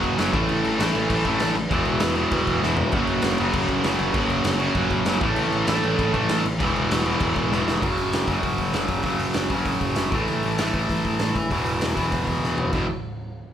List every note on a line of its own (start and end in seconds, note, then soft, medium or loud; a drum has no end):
0.00 0.15 F#1 medium
0.00 0.16 F#2 medium
0.00 0.18 C#3 medium
0.00 0.17 F#3 loud
0.00 0.33 F#3 medium
0.00 0.33 A#3 medium
0.00 0.34 C#4 medium
0.00 0.34 F#4 medium
0.00 kick medium
0.00 crash medium
0.17 0.30 F#1 loud
0.17 0.32 F#2 medium
0.17 0.31 C#3 medium
0.17 0.33 F#3 loud
0.17 snare loud
0.17 crash medium
0.32 0.44 A1 loud
0.32 0.77 A2 loud
0.32 0.93 A2 medium
0.32 0.79 E3 loud
0.32 0.94 E3 loud
0.32 0.79 A3 loud
0.32 0.94 A3 loud
0.32 0.93 C#4 loud
0.32 kick loud
0.32 crash medium
0.36 0.92 E4 loud
0.49 0.61 A1 medium
0.49 crash medium
0.65 0.76 A1 loud
0.65 crash medium
0.78 0.91 A1 loud
0.78 1.24 A2 medium
0.78 1.24 E3 medium
0.78 1.24 A3 medium
0.78 snare loud
0.78 crash loud
0.93 1.06 A1 loud
0.93 1.55 A2 medium
0.93 1.55 E3 medium
0.93 1.55 A3 medium
0.93 1.55 C#4 medium
0.93 1.54 E4 medium
0.93 crash medium
1.10 1.21 A1 medium
1.10 kick loud
1.10 crash loud
1.25 1.36 A1 medium
1.25 1.56 A2 medium
1.25 1.55 E3 medium
1.25 1.55 A3 medium
1.25 kick medium
1.25 crash medium
1.40 1.52 A1 loud
1.40 snare loud
1.40 crash medium
1.55 1.66 A1 loud
1.55 crash medium
1.69 1.82 E1 medium
1.69 2.15 E2 loud
1.69 2.16 B2 loud
1.69 2.29 E3 medium
1.69 2.31 G#3 loud
1.69 2.31 B3 loud
1.69 2.31 E4 loud
1.69 kick loud
1.69 crash medium
1.73 2.15 E3 loud
1.85 1.98 E1 medium
1.85 crash medium
2.00 2.24 E1 loud
2.00 snare loud
2.00 crash medium
2.15 2.62 B2 medium
2.15 2.61 E3 medium
2.15 crash medium
2.20 2.60 E2 medium
2.31 2.43 E1 medium
2.31 2.91 E3 medium
2.31 2.92 G#3 medium
2.31 2.92 B3 medium
2.31 2.93 E4 medium
2.31 kick loud
2.31 crash medium
2.47 2.58 E1 medium
2.47 kick medium
2.47 crash medium
2.62 2.74 E1 loud
2.62 2.92 E2 medium
2.62 2.92 B2 medium
2.62 2.93 E3 loud
2.62 snare medium
2.77 2.89 E1 loud
2.77 floor tom loud
2.92 3.04 F#1 loud
2.92 3.38 F#2 loud
2.92 3.39 C#3 loud
2.92 3.52 F#3 loud
2.92 3.53 A#3 loud
2.92 3.55 C#4 loud
2.92 3.54 F#4 medium
2.92 kick loud
2.92 crash medium
2.96 3.37 F#3 loud
3.07 3.19 F#1 medium
3.07 crash medium
3.22 3.35 F#1 medium
3.22 snare loud
3.22 crash medium
3.38 3.51 F#1 loud
3.38 3.83 F#2 medium
3.38 3.84 C#3 medium
3.38 3.83 F#3 medium
3.38 crash medium
3.53 3.65 F#1 medium
3.53 4.13 F#3 medium
3.53 4.14 A#3 medium
3.53 4.16 C#4 medium
3.53 4.15 F#4 medium
3.53 kick loud
3.53 crash loud
3.68 3.80 F#1 medium
3.68 kick medium
3.68 crash medium
3.84 3.95 F#1 loud
3.84 4.12 F#2 medium
3.84 4.14 C#3 medium
3.84 4.15 F#3 medium
3.84 snare loud
3.84 crash medium
3.99 4.10 F#1 loud
3.99 crash medium
4.13 4.25 F#1 loud
4.13 4.59 F#2 medium
4.13 4.60 C#3 loud
4.13 4.74 F#3 loud
4.13 4.58 F#3 loud
4.13 4.75 A#3 medium
4.13 4.76 C#4 medium
4.13 4.76 F#4 loud
4.13 kick loud
4.13 crash medium
4.30 4.41 F#1 medium
4.30 crash medium
4.44 4.68 F#1 loud
4.44 snare loud
4.44 crash loud
4.59 5.05 F#2 medium
4.59 5.06 C#3 medium
4.59 5.05 F#3 loud
4.59 crash medium
4.75 4.86 F#1 medium
4.75 5.20 F#3 medium
4.75 5.21 A#3 medium
4.75 5.22 C#4 medium
4.75 5.22 F#4 medium
4.75 kick loud
4.75 crash medium
4.90 5.02 F#1 medium
4.90 kick medium
4.90 crash medium
5.05 5.17 F#1 loud
5.05 5.21 F#2 medium
5.05 5.20 C#3 medium
5.05 5.22 F#3 medium
5.05 snare loud
5.05 crash medium
5.21 5.33 A1 loud
5.21 5.66 A2 loud
5.21 5.82 A2 medium
5.21 5.82 E3 medium
5.21 5.68 E3 loud
5.21 5.83 A3 loud
5.21 5.68 A3 medium
5.21 5.82 C#4 loud
5.21 5.81 E4 medium
5.21 kick loud
5.21 crash medium
5.36 5.48 A1 loud
5.36 crash medium
5.51 5.63 A1 medium
5.51 crash medium
5.67 5.79 A1 medium
5.67 6.12 A2 medium
5.67 6.13 E3 medium
5.67 6.12 A3 medium
5.67 snare loud
5.67 crash medium
5.82 5.94 A1 loud
5.82 6.44 A2 medium
5.82 6.44 E3 medium
5.82 6.44 A3 medium
5.82 6.43 C#4 medium
5.82 6.43 E4 medium
5.82 crash medium
5.99 6.10 A1 medium
5.99 kick loud
5.99 crash medium
6.14 6.25 A1 medium
6.14 6.44 A2 medium
6.14 6.44 E3 medium
6.14 6.43 A3 medium
6.14 kick medium
6.14 crash medium
6.29 6.40 A1 loud
6.29 snare loud
6.29 crash medium
6.44 6.62 A1 loud
6.44 crash medium
6.58 6.71 E1 loud
6.58 7.05 E2 medium
6.58 7.06 B2 loud
6.58 7.18 E3 medium
6.58 7.20 G#3 medium
6.58 7.20 B3 loud
6.58 7.21 E4 loud
6.58 kick loud
6.58 crash medium
6.63 7.05 E3 medium
6.75 6.86 E1 medium
6.75 crash medium
6.89 7.12 E1 loud
6.89 snare loud
6.89 crash loud
7.06 7.50 E2 medium
7.06 7.51 B2 medium
7.06 7.51 E3 medium
7.06 crash medium
7.20 7.32 E1 medium
7.20 7.81 E3 medium
7.20 7.81 G#3 medium
7.20 7.82 B3 medium
7.20 7.82 E4 medium
7.20 kick loud
7.20 crash medium
7.36 7.47 E1 medium
7.36 kick medium
7.36 crash medium
7.52 7.63 E1 loud
7.52 7.81 E2 medium
7.52 7.82 B2 medium
7.52 7.83 E3 medium
7.52 snare medium
7.67 7.78 F1 loud
7.67 snare loud
7.82 7.95 F#1 medium
7.82 8.27 F#2 medium
7.82 8.28 C#3 medium
7.82 8.26 F#3 medium
7.82 kick medium
7.82 crash loud
7.95 8.09 F#1 medium
7.95 open hi-hat medium
8.12 8.25 F#1 medium
8.12 snare loud
8.12 open hi-hat medium
8.27 8.41 F#1 medium
8.27 9.03 F#2 medium
8.27 9.04 C#3 medium
8.27 9.04 F#3 medium
8.27 kick medium
8.27 open hi-hat medium
8.43 8.56 F#1 medium
8.43 kick loud
8.43 open hi-hat medium
8.58 8.71 F#1 medium
8.58 kick medium
8.58 open hi-hat medium
8.73 8.86 F#1 medium
8.73 snare medium
8.73 open hi-hat medium
8.88 9.02 F#1 loud
8.88 kick medium
8.88 open hi-hat medium
9.03 9.17 F#1 medium
9.03 9.49 F#2 medium
9.03 9.50 C#3 loud
9.03 9.49 F#3 loud
9.03 kick medium
9.03 open hi-hat medium
9.19 9.33 F#1 medium
9.19 open hi-hat medium
9.34 9.48 F#1 medium
9.34 snare loud
9.34 open hi-hat medium
9.50 9.63 F#1 medium
9.50 10.12 F#2 medium
9.50 10.11 C#3 medium
9.50 10.11 F#3 medium
9.50 kick loud
9.50 open hi-hat medium
9.65 9.79 F#1 medium
9.65 kick medium
9.65 open hi-hat medium
9.81 9.94 F#1 medium
9.81 kick medium
9.81 open hi-hat medium
9.95 10.10 F#1 medium
9.95 snare loud
9.95 open hi-hat medium
10.12 10.25 A1 medium
10.12 10.57 A2 medium
10.12 10.60 E3 medium
10.12 10.59 A3 medium
10.12 kick loud
10.12 open hi-hat medium
10.28 10.41 A1 loud
10.28 open hi-hat medium
10.43 10.57 A1 medium
10.43 open hi-hat medium
10.58 10.73 A1 medium
10.58 11.34 A2 medium
10.58 11.53 E3 medium
10.58 11.36 A3 medium
10.58 snare loud
10.58 open hi-hat medium
10.74 10.87 A1 medium
10.74 kick loud
10.74 open hi-hat medium
10.89 11.02 A1 medium
10.89 kick medium
10.89 open hi-hat medium
11.05 11.17 A1 medium
11.05 kick medium
11.05 open hi-hat medium
11.19 11.33 A1 medium
11.19 snare medium
11.19 open hi-hat medium
11.35 11.48 A1 loud
11.35 kick medium
11.35 open hi-hat medium
11.50 11.64 E1 medium
11.50 11.96 E2 medium
11.50 11.96 B2 medium
11.50 11.95 E3 loud
11.50 kick medium
11.50 open hi-hat medium
11.65 11.79 E1 medium
11.65 open hi-hat medium
11.81 11.94 E1 medium
11.81 snare loud
11.81 open hi-hat medium
11.96 12.09 E1 medium
11.96 12.72 E2 medium
11.96 12.72 B2 medium
11.96 12.72 E3 medium
11.96 kick medium
11.96 open hi-hat medium
12.12 12.25 E1 medium
12.12 kick loud
12.12 open hi-hat medium
12.27 12.40 E1 medium
12.27 kick medium
12.27 open hi-hat soft
12.43 12.56 E1 medium
12.43 snare medium
12.58 12.71 E1 medium
12.58 floor tom medium
12.73 12.87 E1 medium
12.73 12.85 E2 medium
12.73 12.86 B2 loud
12.73 12.86 E3 loud
12.73 kick medium
12.73 crash medium